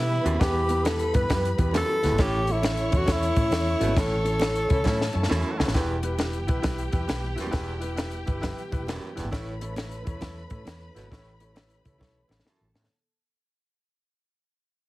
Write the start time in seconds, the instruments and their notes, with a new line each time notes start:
Already playing: fingered electric bass B2, tonewheel organ E3 G3 B3 G4, grand piano B3 E4 G4 B4, tenor saxophone E4, string section B4 B5
0.23 fingered electric bass D#2, baritone saxophone F#2, grand piano B3 E4 G4 B4, closed hi-hat
0.34 high conga
0.39 baritone saxophone E2, fingered electric bass E2, grand piano E3 B3 E4 G4 B4, tenor saxophone G4, kick, snare, closed hi-hat
0.68 grand piano B3 E4 G4 B4, closed hi-hat, muted conga
0.84 grand piano B3 E4 G4 B4, tenor saxophone G#4 A4, snare, closed hi-hat, high conga
0.99 closed hi-hat
1.13 fingered electric bass G2, grand piano B3 E4 G4 B4, tenor saxophone B4, kick, closed hi-hat
1.29 fingered electric bass F#2, grand piano B3 E4 G4 B4, kick, snare, closed hi-hat, muted conga, low conga
1.45 closed hi-hat
1.58 fingered electric bass E2, grand piano B3 E4 G4 B4, kick, closed hi-hat, muted conga
1.73 baritone saxophone F#2, grand piano B3 E4 G4 B4, snare, closed hi-hat, high conga
1.77 tenor saxophone A4
2.03 fingered electric bass D2, baritone saxophone E2, grand piano B3 E4 G4 B4, snare, closed hi-hat
2.11 fingered electric bass G#1, high conga
2.17 fingered electric bass A1, baritone saxophone A2, grand piano A2 C#4 E4 A4 C#5, tonewheel organ A3 C#4 A4, tenor saxophone G4, string section C#5 C#6, kick, snare, closed hi-hat, muted conga
2.47 grand piano C#4 E4 A4 C#5, closed hi-hat, muted conga
2.52 tenor saxophone E4
2.62 grand piano C#4 E4 A4 C#5, snare, closed hi-hat, high conga
2.77 closed hi-hat
2.91 fingered electric bass E2, grand piano C#4 E4 A4 C#5, kick, closed hi-hat
2.97 tenor saxophone F#4
3.06 fingered electric bass E2, grand piano C#4 E4 A4 C#5, kick, snare, closed hi-hat, muted conga
3.12 tenor saxophone E4
3.23 closed hi-hat
3.36 fingered electric bass A2, grand piano C#4 E4 A4 C#5, kick, closed hi-hat, muted conga
3.51 fingered electric bass E2, grand piano C#4 E4 A4 C#5, snare, closed hi-hat, high conga
3.80 fingered electric bass G#1, baritone saxophone B2, grand piano C#4 E4 A4 C#5, closed hi-hat
3.88 high conga
3.96 fingered electric bass A1, grand piano A2 C#4 E4 A4 C#5, baritone saxophone A2, kick, snare, closed hi-hat
4.00 tenor saxophone A4
4.24 grand piano C#4 E4 A4 C#5, closed hi-hat, muted conga
4.40 grand piano C#4 E4 A4 C#5, snare, closed hi-hat, high conga
4.55 closed hi-hat
4.68 fingered electric bass C#2, horn section A3 C#4 E4, grand piano C#4 E4 A4 C#5, kick, closed hi-hat
4.84 fingered electric bass A2, horn section A3 C#4 E4, grand piano C#4 E4 A4 C#5, string section A4 A5, kick, snare, muted conga, low conga
5.01 snare
5.13 fingered electric bass F#2, grand piano C#4 E4 A4 C#5, muted conga
5.23 snare
5.28 fingered electric bass E2, baritone saxophone F#2, horn section A3 C#4 E4, grand piano C#4 E4 A4 C#5, snare, high conga
5.59 fingered electric bass C#2, baritone saxophone E2, grand piano C#4 E4 A4 C#5, snare
5.65 fingered electric bass A1, snare, high conga
5.73 fingered electric bass E1, baritone saxophone E2, grand piano E3 E4 G4 B4, tonewheel organ E3 G3 B3 G4, string section G4 G5, kick, snare, closed hi-hat, muted conga
6.02 grand piano E4 G4 B4, closed hi-hat, muted conga
6.17 grand piano E4 G4 B4, snare, closed hi-hat, high conga
6.33 closed hi-hat
6.47 fingered electric bass B1, grand piano E4 G4 B4, kick, closed hi-hat
6.62 fingered electric bass B1, grand piano E4 G4 B4, kick, snare, closed hi-hat, muted conga, low conga
6.78 closed hi-hat
6.92 fingered electric bass E2, grand piano E4 G4 B4, kick, closed hi-hat, muted conga
7.06 fingered electric bass B1, grand piano E4 G4 B4, snare, closed hi-hat, high conga
7.24 high conga
7.36 fingered electric bass D#1, baritone saxophone F#2, grand piano E4 G4 B4, snare, closed hi-hat
7.47 high conga
7.51 fingered electric bass E1, baritone saxophone E2, grand piano E3 E4 G4 B4, kick, snare, closed hi-hat, muted conga
7.79 grand piano E4 G4 B4, closed hi-hat
7.84 muted conga
7.96 grand piano E4 G4 B4, snare, closed hi-hat, high conga
8.11 closed hi-hat
8.26 fingered electric bass G1, grand piano E4 G4 B4, kick, closed hi-hat
8.41 grand piano E4 G4 B4, kick, snare, closed hi-hat, muted conga, low conga
8.58 closed hi-hat
8.71 fingered electric bass F#1, grand piano E4 G4 B4, kick, closed hi-hat, muted conga
8.80 fingered electric bass E1
8.87 baritone saxophone F#2, grand piano E4 G4 B4, snare, closed hi-hat, high conga
9.03 high conga
9.15 fingered electric bass E1, baritone saxophone E2, grand piano E4 G4 B4, snare, closed hi-hat
9.24 fingered electric bass G#1, high conga
9.31 baritone saxophone A2, grand piano A2 E4 A4 C#5, tonewheel organ A3 C#4 A4, string section B4 B5, kick, snare, closed hi-hat, muted conga
9.61 grand piano E4 A4 C#5, closed hi-hat, muted conga
9.76 grand piano E4 A4 C#5, snare, closed hi-hat, high conga
9.91 closed hi-hat
10.05 fingered electric bass E2, grand piano E4 A4 C#5, kick, closed hi-hat
10.21 fingered electric bass E2, grand piano E4 A4 C#5, kick, snare, closed hi-hat, muted conga, low conga
10.50 fingered electric bass A2, grand piano E4 A4 C#5, kick, closed hi-hat, muted conga
10.65 fingered electric bass E2, grand piano E4 A4 C#5, snare, closed hi-hat, high conga
10.81 high conga
10.95 fingered electric bass G#1, baritone saxophone B2, grand piano E4 A4 C#5, snare, closed hi-hat
11.03 high conga
11.11 fingered electric bass A1, baritone saxophone A2, grand piano A2 E4 A4 C#5, tonewheel organ G4, kick, snare, closed hi-hat
11.40 grand piano E4 A4 C#5, closed hi-hat, muted conga
11.55 grand piano E4 A4 C#5, snare, closed hi-hat, high conga
11.70 closed hi-hat
11.84 fingered electric bass C#2, grand piano E4 A4 C#5, kick, closed hi-hat
11.98 fingered electric bass B1, grand piano E4 A4 C#5, kick, snare, muted conga, low conga
12.28 fingered electric bass A1, grand piano E4 A4 C#5, snare, muted conga
12.40 snare
12.44 baritone saxophone F#2, grand piano E4 A4 E5, string section A4 A5, snare, high conga
12.60 fingered electric bass A1, high conga
12.74 baritone saxophone E2, fingered electric bass A2, grand piano E4 A4 C#5, snare
12.82 snare, high conga